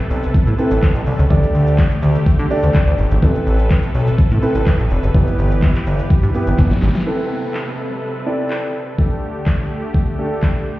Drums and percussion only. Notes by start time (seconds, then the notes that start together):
0.11 open hi-hat, shaker
0.23 closed hi-hat, shaker
0.34 kick, closed hi-hat, shaker
0.47 closed hi-hat, shaker
0.59 open hi-hat, shaker
0.71 closed hi-hat, shaker
0.83 kick, clap, closed hi-hat, shaker
0.96 closed hi-hat, shaker
1.06 open hi-hat, shaker
1.19 closed hi-hat, shaker
1.31 kick, closed hi-hat, shaker
1.43 closed hi-hat, shaker
1.55 open hi-hat, shaker
1.67 closed hi-hat, shaker
1.78 kick, clap, closed hi-hat, shaker
1.91 closed hi-hat, shaker
2.02 open hi-hat, shaker
2.15 closed hi-hat, shaker
2.26 kick, closed hi-hat, shaker
2.39 closed hi-hat, shaker
2.50 open hi-hat, shaker
2.63 closed hi-hat, shaker
2.75 kick, clap, closed hi-hat, shaker
2.88 closed hi-hat, shaker
2.98 open hi-hat, shaker
3.11 closed hi-hat, shaker
3.22 kick, closed hi-hat, shaker
3.35 closed hi-hat, shaker
3.47 open hi-hat, shaker
3.59 closed hi-hat, shaker
3.70 kick, clap, closed hi-hat, shaker
3.83 closed hi-hat, shaker
3.95 open hi-hat, shaker
4.07 closed hi-hat, shaker
4.18 kick, closed hi-hat, shaker
4.31 closed hi-hat, shaker
4.43 open hi-hat, shaker
4.55 closed hi-hat, shaker
4.67 kick, clap, closed hi-hat, shaker
4.80 closed hi-hat, shaker
4.90 open hi-hat, shaker
5.03 closed hi-hat, shaker
5.14 kick, closed hi-hat, shaker
5.27 closed hi-hat, shaker
5.39 open hi-hat, shaker
5.51 closed hi-hat, shaker
5.62 kick, clap, closed hi-hat, shaker
5.75 clap, closed hi-hat, shaker
5.87 open hi-hat, shaker
5.99 closed hi-hat, shaker
6.10 kick, closed hi-hat, shaker
6.23 closed hi-hat, shaker
6.34 open hi-hat, shaker
6.47 closed hi-hat, shaker
6.58 kick, snare, closed hi-hat, shaker
6.65 snare
6.71 snare, closed hi-hat, shaker
6.77 snare
6.82 snare, open hi-hat, shaker
6.89 snare
6.95 snare, shaker
7.01 snare
7.54 clap
8.50 clap
8.99 kick
9.46 kick, clap
9.94 kick
10.43 kick, clap